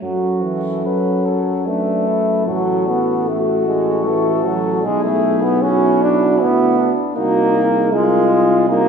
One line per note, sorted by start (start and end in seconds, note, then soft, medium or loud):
0.01 2.49 F#2 soft
0.01 0.44 F#3 medium
0.01 0.81 F#4 soft
0.01 1.62 A4 soft
0.43 0.88 E3 soft
0.84 1.68 F#3 medium
0.84 1.65 C#4 soft
0.84 1.27 B4 medium
1.26 3.30 A4 soft
1.66 2.46 A3 medium
1.66 2.06 D4 soft
1.66 2.47 B4 soft
2.06 2.47 E4 soft
2.47 4.88 A1 soft
2.47 2.89 F#3 medium
2.47 3.27 F#4 soft
2.47 4.82 A4 medium
2.87 3.30 B3 medium
3.28 3.66 A3 medium
3.28 4.07 F#4 soft
3.28 4.83 F#4 medium
3.67 4.07 G#3 medium
4.05 4.48 E3 medium
4.05 4.86 A4 medium
4.47 4.85 F#3 medium
4.83 6.42 B1 soft
4.83 5.03 G#3 medium
4.83 7.00 E4 medium
4.83 5.62 G#4 medium
5.04 5.44 A3 medium
5.43 5.64 B3 medium
5.62 6.03 C#4 medium
5.62 6.42 F#4 medium
5.62 7.01 F#4 medium
6.02 6.43 D4 medium
6.40 6.91 D2 medium
6.40 6.91 B3 medium
6.40 6.79 E4 medium
6.77 7.15 D4 medium
7.15 8.89 C2 medium
7.15 7.94 A#3 medium
7.15 7.65 D#4 medium
7.15 7.92 D#4 medium
7.15 7.55 F#4 medium
7.56 7.94 G#4 medium
7.92 8.69 G#3 medium
7.92 8.71 F4 medium
7.92 8.70 F4 medium
7.92 8.31 A#4 medium
8.31 8.69 G#4 medium
8.68 8.89 A#3 medium
8.68 8.89 D#4 medium
8.68 8.89 F#4 medium